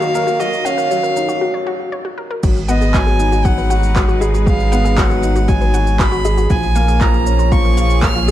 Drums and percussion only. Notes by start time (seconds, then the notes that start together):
0.02 shaker
0.15 shaker
0.28 shaker
0.40 shaker
0.53 shaker
0.66 shaker
0.78 shaker
0.91 shaker
1.04 shaker
1.16 shaker
1.29 shaker
2.43 kick, crash, shaker
2.56 shaker
2.69 shaker
2.81 shaker
2.94 kick, clap, shaker
3.07 shaker
3.20 shaker
3.32 shaker
3.45 kick, shaker
3.58 shaker
3.71 shaker
3.83 shaker
3.96 kick, clap, shaker
4.09 shaker
4.22 shaker
4.34 shaker
4.47 kick, shaker
4.60 shaker
4.72 shaker
4.85 shaker
4.98 kick, clap, shaker
5.11 shaker
5.23 shaker
5.36 shaker
5.48 kick, shaker
5.61 shaker
5.74 shaker
5.87 shaker
6.00 kick, clap, shaker
6.12 shaker
6.25 shaker
6.38 shaker
6.50 kick, shaker
6.63 shaker
6.75 shaker
6.88 shaker
7.01 kick, clap, shaker
7.14 shaker
7.27 shaker
7.39 shaker
7.52 kick, shaker
7.65 shaker
7.77 shaker
7.90 shaker
8.03 kick, clap, shaker
8.15 shaker
8.28 shaker